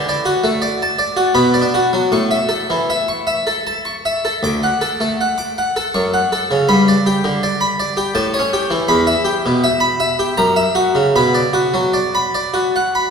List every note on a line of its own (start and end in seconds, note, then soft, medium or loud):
0.00 0.15 D3 medium
0.00 0.10 A5 medium
0.09 0.29 D5 medium
0.25 0.46 F#4 medium
0.44 0.64 A3 medium
0.62 0.82 D5 medium
0.82 1.02 A5 medium
0.99 1.19 D5 medium
1.17 1.36 F#4 medium
1.35 1.60 B2 medium
1.35 1.55 B5 medium
1.54 1.75 D5 soft
1.61 1.88 D4 soft
1.74 1.94 F#4 medium
1.93 2.12 F#3 soft
2.12 2.37 A2 soft
2.12 2.33 C#6 medium
2.31 2.51 E5 soft
2.49 2.70 A4 soft
2.70 2.90 E3 soft
2.90 3.10 E5 soft
3.08 3.29 C#6 soft
3.27 3.47 E5 soft
3.47 3.67 A4 soft
3.67 3.87 A5 soft
3.85 4.06 C#6 soft
4.05 4.25 E5 soft
4.25 4.44 A4 soft
4.43 4.68 D2 medium
4.43 4.64 D6 medium
4.63 4.83 F#5 medium
4.81 5.01 A4 medium
5.00 5.20 A3 medium
5.21 5.40 F#5 medium
5.38 5.58 D6 medium
5.58 5.77 F#5 medium
5.76 5.94 A4 soft
5.94 6.18 F#2 medium
5.94 6.13 C#6 medium
6.14 6.32 F#5 soft
6.32 6.51 A4 medium
6.51 6.68 C#3 soft
6.69 6.92 G2 medium
6.69 6.87 B5 medium
6.88 7.07 D5 medium
7.06 7.25 G4 medium
7.24 7.43 D3 medium
7.43 7.62 D5 medium
7.61 7.80 B5 medium
7.80 7.98 D5 medium
7.97 8.15 G4 medium
8.15 8.39 A2 medium
8.15 8.34 A5 medium
8.34 8.53 C#5 medium
8.39 8.65 C#4 soft
8.53 8.72 G4 medium
8.70 8.89 E3 medium
8.88 9.12 E2 medium
8.88 9.08 B5 medium
9.07 9.26 E5 medium
9.25 9.44 G4 medium
9.46 9.64 B2 medium
9.64 9.82 E5 medium
9.80 10.00 B5 medium
10.00 10.19 E5 medium
10.19 10.37 G4 medium
10.37 10.62 F#2 medium
10.37 10.57 A#5 medium
10.56 10.77 E5 medium
10.75 10.96 F#4 medium
10.95 11.15 C#3 soft
11.16 11.41 B2 medium
11.16 11.37 B5 medium
11.35 11.56 D5 soft
11.53 11.75 F#4 soft
11.74 11.96 F#3 medium
11.94 12.15 D5 medium
12.15 12.36 B5 soft
12.35 12.56 D5 soft
12.54 12.75 F#4 soft
12.76 12.97 F#5 medium
12.95 13.10 B5 soft